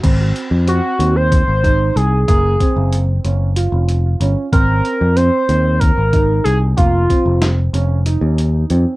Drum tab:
CC |x------|-------|-------|-------|
HH |xxxxxxx|xxxxxxx|xxxxxxx|xxxxxxx|
SD |-------|-------|-------|--o----|
BD |o---oo-|oo-----|o---oo-|oo-----|